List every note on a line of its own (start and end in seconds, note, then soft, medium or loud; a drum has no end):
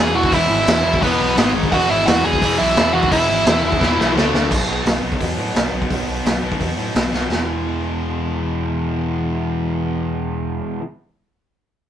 0.00 0.12 E1 loud
0.00 0.12 E2 loud
0.00 0.30 E2 medium
0.00 0.13 B2 loud
0.00 0.31 B2 medium
0.00 0.13 E3 medium
0.00 0.32 E3 medium
0.00 0.14 G#3 medium
0.00 0.14 B3 medium
0.00 0.14 E4 loud
0.00 0.14 G#4 medium
0.00 0.14 G#5 loud
0.13 0.30 E1 loud
0.13 0.30 E2 medium
0.13 0.30 B2 medium
0.13 0.31 E3 medium
0.13 0.32 G#3 medium
0.13 0.31 B3 medium
0.13 0.32 E4 loud
0.13 0.32 F#4 medium
0.13 0.32 F#5 loud
0.23 kick loud
0.31 0.48 E1 loud
0.31 0.47 E2 loud
0.31 1.00 E2 loud
0.31 0.48 B2 medium
0.31 1.01 B2 loud
0.31 0.48 E3 loud
0.31 1.02 E3 loud
0.31 0.50 G#3 loud
0.31 0.49 B3 loud
0.31 0.49 E4 loud
0.31 0.99 E4 medium
0.31 1.04 E5 loud
0.31 kick loud
0.31 open hi-hat medium
0.49 0.65 G#1 loud
0.49 0.64 E2 medium
0.49 0.65 B2 medium
0.49 0.65 E3 medium
0.49 0.66 G#3 medium
0.49 0.66 B3 medium
0.49 0.66 E4 medium
0.65 0.82 E2 medium
0.65 0.83 B2 loud
0.65 0.83 E3 medium
0.65 0.84 G#3 medium
0.65 0.84 B3 medium
0.65 0.84 E4 medium
0.65 snare loud
0.65 open hi-hat medium
0.83 1.00 E1 loud
0.83 1.00 E2 medium
0.83 1.00 B2 loud
0.83 1.00 E3 medium
0.83 1.02 G#3 medium
0.83 1.02 B3 loud
0.83 1.02 E4 loud
0.94 kick loud
1.01 1.17 E1 loud
1.01 1.17 E2 loud
1.01 1.35 E2 medium
1.01 1.17 B2 loud
1.01 1.37 B2 medium
1.01 1.17 E3 medium
1.01 1.19 G#3 loud
1.01 1.18 B3 loud
1.01 1.52 B3 medium
1.01 1.18 E4 loud
1.01 1.51 B4 medium
1.01 kick loud
1.01 open hi-hat medium
1.05 1.37 E3 medium
1.18 1.35 B1 loud
1.18 1.35 E2 loud
1.18 1.35 B2 medium
1.18 1.35 E3 medium
1.18 1.36 G#3 medium
1.18 1.36 B3 medium
1.18 1.36 E4 loud
1.36 1.52 G#1 loud
1.36 1.70 G#2 medium
1.36 1.51 G#2 medium
1.36 1.52 D#3 loud
1.36 1.71 D#3 loud
1.36 1.53 G#3 loud
1.36 1.73 G#3 loud
1.36 1.53 D#4 loud
1.36 snare loud
1.36 open hi-hat medium
1.53 1.70 G#1 loud
1.53 1.70 G#2 medium
1.53 1.70 D#3 medium
1.53 1.71 G#3 medium
1.53 1.70 D#4 medium
1.63 kick medium
1.70 1.87 E1 loud
1.70 1.88 E2 loud
1.70 2.40 E2 loud
1.70 1.88 B2 loud
1.70 2.41 B2 loud
1.70 1.88 E3 loud
1.70 2.41 E3 loud
1.70 1.88 G#3 loud
1.70 1.89 B3 loud
1.70 1.88 E4 loud
1.70 1.89 F#4 medium
1.70 1.89 G#4 loud
1.70 1.90 F#5 loud
1.70 kick loud
1.70 open hi-hat medium
1.88 2.04 G#1 loud
1.88 2.05 E2 medium
1.88 2.05 B2 medium
1.88 2.04 E3 medium
1.88 2.05 G#3 medium
1.88 2.05 B3 medium
1.88 2.06 E4 medium
1.88 2.06 G#4 medium
1.88 2.07 E5 medium
2.06 2.23 E2 medium
2.06 2.22 E2 medium
2.06 2.23 B2 loud
2.06 2.22 E3 medium
2.06 2.23 G#3 medium
2.06 2.23 B3 medium
2.06 2.24 E4 loud
2.06 2.23 F#4 medium
2.06 2.24 G#4 loud
2.06 2.24 F#5 loud
2.06 snare loud
2.06 open hi-hat medium
2.23 2.39 E1 loud
2.23 2.40 E2 loud
2.23 2.41 B2 loud
2.23 2.40 E3 loud
2.23 2.40 G#3 loud
2.23 2.40 B3 loud
2.23 2.41 E4 loud
2.23 2.41 G#4 loud
2.23 2.57 G#4 medium
2.23 2.60 G#5 loud
2.33 kick loud
2.41 2.57 E1 loud
2.41 3.08 E2 medium
2.41 2.57 E2 medium
2.41 2.57 B2 loud
2.41 3.11 B2 medium
2.41 2.57 E3 loud
2.41 3.12 E3 medium
2.41 2.58 G#3 loud
2.41 2.58 B3 loud
2.41 2.58 E4 loud
2.41 2.59 G#4 loud
2.41 kick loud
2.41 open hi-hat medium
2.58 2.75 B1 medium
2.58 2.74 E2 medium
2.58 2.75 B2 medium
2.58 2.75 E3 medium
2.58 2.75 G#3 medium
2.58 2.75 B3 medium
2.58 2.76 E4 medium
2.58 2.92 E4 medium
2.58 2.76 G#4 medium
2.58 2.94 E5 loud
2.76 2.92 E1 medium
2.76 2.92 E2 medium
2.76 2.93 B2 medium
2.76 2.92 E3 medium
2.76 2.93 G#3 medium
2.76 2.93 B3 medium
2.76 2.93 E4 loud
2.76 2.93 G#4 loud
2.76 snare loud
2.76 open hi-hat medium
2.93 3.09 E1 loud
2.93 3.09 E2 medium
2.93 3.10 B2 medium
2.93 3.09 E3 medium
2.93 3.10 G#3 medium
2.93 3.10 B3 medium
2.93 3.10 E4 medium
2.93 3.10 F#4 medium
2.93 3.11 G#4 loud
2.93 3.11 F#5 medium
3.03 kick loud
3.10 3.27 E1 loud
3.10 3.79 E2 loud
3.10 3.27 E2 loud
3.10 3.28 B2 loud
3.10 3.80 B2 loud
3.10 3.27 E3 loud
3.10 3.81 E3 loud
3.10 3.28 G#3 loud
3.10 3.28 B3 loud
3.10 3.28 E4 loud
3.10 4.13 E4 medium
3.10 3.28 G#4 loud
3.10 4.12 E5 medium
3.10 kick medium
3.10 open hi-hat medium
3.28 3.44 G#1 medium
3.28 3.45 E2 loud
3.28 3.45 B2 medium
3.28 3.45 E3 medium
3.28 3.46 G#3 medium
3.28 3.46 B3 medium
3.28 3.46 E4 loud
3.28 3.47 G#4 medium
3.46 3.61 E2 loud
3.46 3.62 E2 medium
3.46 3.63 B2 medium
3.46 3.61 E3 medium
3.46 3.62 G#3 medium
3.46 3.62 B3 medium
3.46 3.63 E4 loud
3.46 3.63 G#4 loud
3.46 snare loud
3.46 open hi-hat medium
3.62 3.78 E1 loud
3.62 3.79 E2 medium
3.62 3.80 B2 loud
3.62 3.79 E3 loud
3.62 3.79 G#3 loud
3.62 3.80 B3 medium
3.62 3.80 E4 loud
3.62 3.80 G#4 loud
3.72 kick loud
3.80 3.96 E1 loud
3.80 4.14 E2 medium
3.80 3.97 E2 loud
3.80 3.97 B2 loud
3.80 4.15 B2 medium
3.80 3.96 E3 loud
3.80 4.16 E3 medium
3.80 3.97 G#3 loud
3.80 3.97 B3 loud
3.80 3.98 E4 loud
3.80 3.98 G#4 loud
3.80 kick loud
3.80 snare medium
3.98 4.13 B1 medium
3.98 4.14 E2 medium
3.98 4.15 B2 loud
3.98 4.14 E3 medium
3.98 4.15 G#3 medium
3.98 4.15 B3 medium
3.98 4.15 E4 medium
3.98 4.15 G#4 medium
3.98 snare medium
4.15 4.31 D2 loud
4.15 4.49 D3 medium
4.15 4.32 D3 medium
4.15 4.33 A3 loud
4.15 4.50 A3 loud
4.15 4.33 D4 loud
4.15 4.51 D4 loud
4.15 4.33 A4 loud
4.15 snare loud
4.33 4.52 D2 medium
4.33 4.49 D3 medium
4.33 4.50 A3 medium
4.33 4.50 D4 medium
4.33 4.50 A4 medium
4.33 snare loud
4.50 4.62 B1 medium
4.50 4.68 B2 medium
4.50 4.68 F#3 loud
4.50 4.69 B3 loud
4.50 4.69 D#4 loud
4.50 kick loud
4.50 crash loud
4.68 4.79 B1 medium
4.68 4.85 B2 medium
4.68 4.86 F#3 medium
4.68 4.86 B3 medium
4.68 4.86 D#4 medium
4.85 4.96 B1 medium
4.85 5.02 B2 medium
4.85 5.02 F#3 medium
4.85 5.03 B3 medium
4.85 5.04 D#4 medium
4.85 snare loud
4.85 open hi-hat medium
5.03 5.14 B1 medium
5.03 5.19 B2 medium
5.03 5.19 F#3 loud
5.03 5.20 B3 loud
5.03 5.20 D#4 medium
5.12 kick medium
5.20 5.31 E2 loud
5.20 5.36 B2 loud
5.20 5.37 F#3 medium
5.20 5.38 B3 loud
5.20 5.38 D#4 loud
5.20 kick medium
5.20 open hi-hat medium
5.37 5.49 A2 medium
5.37 5.54 B2 medium
5.37 5.55 F#3 medium
5.37 5.56 B3 medium
5.37 5.56 D#4 medium
5.55 5.66 B1 medium
5.55 5.71 B2 medium
5.55 5.72 F#3 medium
5.55 5.73 B3 medium
5.55 5.72 D#4 medium
5.55 snare loud
5.55 open hi-hat medium
5.72 5.83 B1 medium
5.72 5.90 B2 medium
5.72 5.90 F#3 medium
5.72 5.90 B3 medium
5.72 5.91 D#4 medium
5.82 kick medium
5.91 6.01 B1 medium
5.91 6.06 B2 loud
5.91 6.07 F#3 medium
5.91 6.07 B3 loud
5.91 6.08 D#4 loud
5.91 kick medium
5.91 open hi-hat medium
6.07 6.19 B1 medium
6.07 6.24 B2 medium
6.07 6.25 F#3 medium
6.07 6.25 B3 medium
6.07 6.25 D#4 medium
6.25 6.37 B1 medium
6.25 6.41 B2 medium
6.25 6.42 F#3 medium
6.25 6.42 B3 medium
6.25 6.43 D#4 medium
6.25 snare loud
6.25 open hi-hat medium
6.43 6.54 B1 medium
6.43 6.58 B2 medium
6.43 6.59 F#3 medium
6.43 6.59 B3 medium
6.43 6.60 D#4 loud
6.52 kick medium
6.60 6.71 E2 medium
6.60 6.76 B2 medium
6.60 6.77 F#3 loud
6.60 6.77 B3 medium
6.60 6.77 D#4 loud
6.60 kick medium
6.60 open hi-hat soft
6.77 6.89 A2 medium
6.77 6.93 B2 medium
6.77 6.94 F#3 medium
6.77 6.94 B3 medium
6.77 6.95 D#4 medium
6.95 7.06 B1 medium
6.95 7.10 B2 medium
6.95 7.11 F#3 medium
6.95 7.12 B3 medium
6.95 7.12 D#4 medium
6.95 snare loud
6.95 open hi-hat medium
7.12 7.24 B1 medium
7.12 7.29 B2 medium
7.12 7.29 F#3 medium
7.12 7.30 B3 medium
7.12 7.30 D#4 medium
7.12 snare medium
7.29 10.60 E1 medium
7.29 10.79 E2 medium
7.29 10.81 B2 loud
7.29 10.79 E3 medium
7.29 10.80 G#3 medium
7.29 10.82 B3 loud
7.29 10.83 E4 loud
7.29 snare medium
7.33 10.83 E3 medium